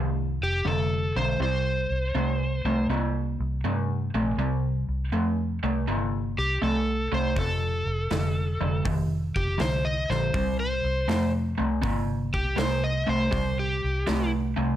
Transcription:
Already playing: C2 F2 D#3
0.41 F1 G4
0.65 F1 F2 D3 A4
1.16 B1 F2 D3 C5
1.40 C2 C3 G3 C5
1.90 C2
2.15 C2 C3 A3
2.65 C2 C3 A3
2.90 C2 C3 A#3
3.40 C2
3.64 G2 C3 A3
4.14 A#1 C3 A3
4.38 C2 C3 G3
4.88 C2
5.12 F2 C3 A3
5.63 C2 C3 A3
5.88 G1 C3 A#3
6.38 C2 G4
6.62 C2 C3 A3 A4
7.12 C2 C3 A3 C5
7.36 F1 F2 C3 A4, kick, open hi-hat
7.86 F1
8.11 F1 F2 D3, snare, open hi-hat
8.61 F1 F2 D3
8.85 F1 F2 D#3, kick, open hi-hat
9.36 F1 G4, kick
9.58 C2 F2 D3 C5, snare, open hi-hat
9.85 D#5
10.10 A#1 F2 D3 C5, snare
10.34 C2 C3 G3, kick, open hi-hat
10.60 C5
10.84 C2
11.08 F2 C3 A3, snare, open hi-hat
11.58 C2 C3 A3
11.82 G1 C3 A#3, kick, open hi-hat
12.34 C2 G4, kick
12.56 C2 C3 A3 C5, snare, open hi-hat
12.84 D#5
13.07 C2 C3 A3 C5
13.31 C2 C3 G3, kick, open hi-hat
13.59 G4
13.84 C2
14.07 C2 C3 A3, snare, open hi-hat
14.56 C2 C3 A3

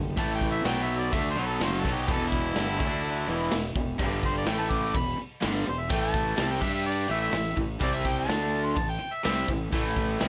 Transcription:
Already playing: F#1 G2 D3
0.16 A1 A2 E3 A3 A5, kick, crash
0.35 G5
0.41 kick
0.51 E5
0.64 B1 B2 F#3 B3 G5, snare, crash
0.83 E5
0.99 D5
1.11 D2 D3 A3 D4 E5, kick, crash
1.31 C5
1.36 B1 B2 F#3 B3
1.47 A4
1.60 F#1 F#2 C#3 F#3 C5, snare, crash
1.80 A4
1.85 B1 B2 F#3 B3, kick
1.95 G4
2.08 E1 E2 B2 E3 A4, kick, crash
2.28 E4
2.32 kick
2.56 G1 G2 D3 G3, snare, crash
2.79 D2 D3 A3 D4, kick
3.05 crash
3.27 E1 E2 B2 E3
3.51 E1 E2 B2, snare, crash
3.75 E1 E2 B2, kick
3.98 G1 G2 D3 G3, kick, crash
4.23 C5, kick
4.38 D5
4.46 A1 A2 E3 A3 G5, snare, crash
4.59 A5
4.71 D6, kick
4.94 E1 E2 B2 B5, kick, crash
5.18 muted overdriven electric guitar stroke, muted fingered electric bass stroke
5.41 G1 G2 D3 G3, snare, crash
5.66 E1 E2 B2 C5
5.80 E5
5.89 A1 A2 E3 A3 G5, kick, crash
6.02 A5
6.14 kick
6.37 C2 C3 G3 C4, snare, crash
6.51 G5
6.60 G2 G3 D4 G4 E5, kick, crash
6.74 E5
6.86 D5, crash
7.07 A1 A2 E3 A3 E5
7.32 A1 A2 E3, snare, crash
7.56 A1 A2 E3, kick
7.80 C2 C3 G3 C4 D5, kick, crash
7.95 E5
8.05 G5, kick
8.19 A5
8.28 D2 D3 A3 D4, snare, crash
8.66 C6
8.76 A1 A2 E3 A5, kick, crash
8.90 G5
8.99 muted overdriven electric guitar stroke, muted fingered electric bass stroke
9.15 E5
9.24 C2 C3 G3 C4 E5, snare, crash
9.48 A1 A2 E3, kick
9.72 A1 A2 E3 A3, kick, crash
9.97 kick
10.19 C2 C3 G3 C4, snare, crash

